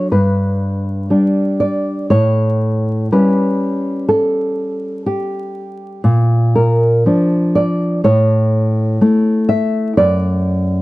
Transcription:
nylon-string guitar
Already playing: D4 C#5
0.11 G2 B4
1.10 G3 D4
1.60 D5
2.10 A2 C#5
3.12 G3 C#4 B4
4.09 A4
5.06 G4
6.04 A#2
6.55 A#4
7.06 F3 D4
7.55 D5
8.04 A2 C#5
9.01 A3 E4
9.49 E5
9.97 F#2 D5

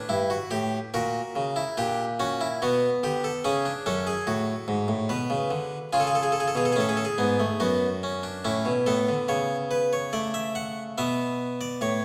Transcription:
harpsichord
Already playing: B4
0.09 G2 E4
0.30 F#4
0.51 A2 G4
0.94 A#2 F#4 A#4
1.36 C#3
1.56 E4
1.77 A#2 D4 G4
2.20 C#4 F#4
2.41 E4
2.62 B2 B3 F#4
3.03 D3 G4
3.24 A4
3.45 C#3 C#4 G#4
3.66 D4
3.86 F#2 C#4 A4
4.07 G#4
4.27 A2 F#4
4.68 G#2
4.88 A2
5.09 B2 B4
5.30 C#3
5.51 D3
5.93 C#3 F4 G#4
6.00 A4
6.07 G#4
6.15 A4
6.23 G#4
6.32 A4
6.40 G#4
6.48 A4
6.55 B2 G#4
6.65 A4
6.72 C#4 G#4
6.77 A2 A4
6.89 G#4
6.97 A4
7.05 G#4
7.18 G#2 B3
7.40 A3
7.60 F#2 B3 F#4
8.03 C#4
8.23 D4
8.45 A2 C#4 E4
8.65 B2
8.86 A2 B3 A4
9.09 D3
9.28 C#3 C#5
9.71 B4
9.93 C#5
10.13 A3 D5
10.34 E5
10.55 F#5
10.98 B2 B3 E5
11.61 D5
11.81 A2 C#5

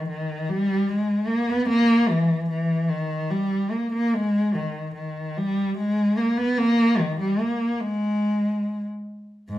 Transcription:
cello
0.09 D#3
0.49 G3
0.89 G#3
1.27 A#3
1.50 B3
1.69 A#3
2.09 E3
2.49 E3
2.89 D#3
3.30 G3
3.71 A#3
3.93 A#3
4.14 G#3
4.54 D#3
4.95 D#3
5.37 G3
5.77 G#3
6.17 A#3
6.37 B3
6.58 A#3
6.99 D#3
7.20 G3
7.40 A#3
7.80 G#3
9.49 G#2

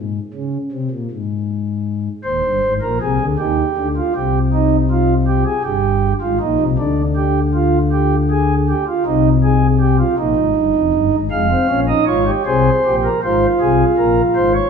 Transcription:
pipe organ
Already playing: G#2
0.34 C#3
0.72 C3
0.90 A#2
1.11 G#2
2.24 D#1 D#2 C5
2.44 G1 G2
2.63 G#1 G#2
2.82 A#1 A#2 A#4
3.02 C2 C3 G#4
3.19 D2 D3
3.39 D#2 D#3 G4
3.77 D2 D3
3.97 F4
4.15 C2 C3 G4
4.53 D#4
4.91 F4
5.28 G4
5.46 G#4
5.64 G1 G2 G4
6.21 G#1 G#2 F4
6.40 A#1 A#2 D#4
6.60 C2 C3
6.79 D2 D3 D4
7.16 G4
7.55 F4
7.92 G4
8.31 G#4
8.69 G4
8.88 F4
9.06 C2 C3 D#4
9.43 G#4
9.80 G4
9.99 F4
10.18 A#1 A#2 D#4
10.36 G#1 G#2
10.55 G1 G2
10.75 F1 F2
10.92 G1 G2
11.12 G#1 G#2
11.31 F1 F2 G#3 F5
11.51 C4
11.68 A#1 A#2 C#4
11.88 D#4 D#5
12.07 G#1 G#2 F4 C#5
12.27 G4
12.46 C2 C3 G#4 C5
12.85 A#1 A#2 G4
13.04 A#4
13.23 G#1 G#2 F4 C5
13.60 C2 C3 G#4
13.97 A#1 A#2 A#4
14.36 G#1 G#2 C5
14.55 C#5

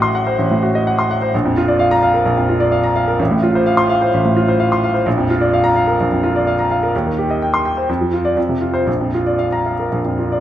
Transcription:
grand piano
Already playing: A1 A2 F#4 D#5 F#5
0.02 C6
0.15 F#5
0.27 C5
0.39 A1
0.51 A2
0.63 F#4
0.75 D#5
0.87 F#5
0.99 C6
1.11 F#5
1.22 C5
1.34 A#1
1.45 F2
1.57 F4
1.68 D5
1.79 F5
1.91 A#5
2.03 F5
2.14 A#4
2.25 A#1
2.37 F2
2.49 F4
2.60 D5
2.72 F5
2.84 A#5
2.96 F5
3.08 A#4
3.19 A1
3.31 A2
3.43 F4
3.55 C5
3.66 F5
3.77 C6
3.89 F5
4.01 C5
4.14 A1
4.25 A2
4.37 F4
4.48 C5
4.60 F5
4.72 C6
4.84 F5
4.94 C5
5.06 A#1
5.18 F2
5.30 F4
5.41 D5
5.53 F5
5.64 A#5
5.76 F5
5.87 A#4
6.00 A#1
6.12 F2
6.23 F4
6.36 D5
6.47 F5
6.59 A#5
6.71 F5
6.83 A#4
6.96 D#2
7.06 D#3
7.18 G4
7.30 D#5
7.42 G5
7.54 C6
7.65 G5
7.77 C5
7.89 F2
8.01 F3
8.13 F4
8.25 D5
8.37 F2
8.49 C3
8.61 F4
8.74 C5
8.87 A#1
9.01 F2
9.14 F4
9.27 D5
9.39 F5
9.52 A#5
9.66 F5
9.79 A#4
9.92 A#1
10.05 F2
10.18 F4
10.32 D5

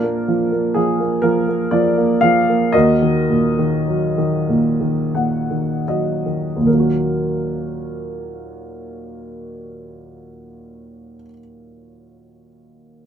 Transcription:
upright piano
Already playing: A#2 D4 F4 A#4
0.04 A#3
0.28 F3
0.52 A#3
0.74 F3 G#4
1.00 A#3
1.22 F3 A#4
1.48 A#3
1.71 F3 D5
1.98 A#3
2.21 F3 F5
2.50 A#3
2.72 D#2 F#4 A#4 D#5
3.02 D#3
3.30 A#2
3.59 D#3
3.88 F#3
4.18 D#3
4.49 A#2
4.81 D#3
5.15 A#2 F#5
5.51 D#3
5.88 F#3 D#5
6.26 D#3
6.56 D#2
6.61 A#2
6.65 D#3 A#4
6.70 F#3
6.75 A#3
6.80 F#4

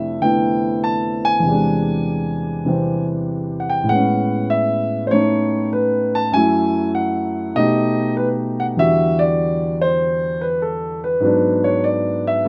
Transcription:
grand piano
Already playing: F2 C3 G3 A3 D4 E4 E5
0.21 D3 A3 B3 E4 G5
0.84 A5
1.25 G#5
1.40 E2 C3
1.45 G3 G#3
1.51 D4
2.65 C3 E3 G3 C4
3.60 F#5
3.70 G5
3.84 A2 G#3
3.89 B3 F#5
3.95 C#4
4.50 E5
5.07 A3 C5
5.11 C#4 D#4 C#5
5.73 B4
6.15 A5
6.32 F#2 F#3 A3 G#5
6.37 E4
6.95 F#5
7.55 B2 A3 D#4 G4 D#5
8.17 B4
8.60 F#5
8.77 E2 D3 G3 F#4 E5
9.19 D5
9.81 C5
10.41 B4
10.62 A4
11.04 B4
11.20 G#2 F#3 B3
11.25 D4
11.64 C#5
11.84 D5
12.27 E5
12.45 C#3 A3

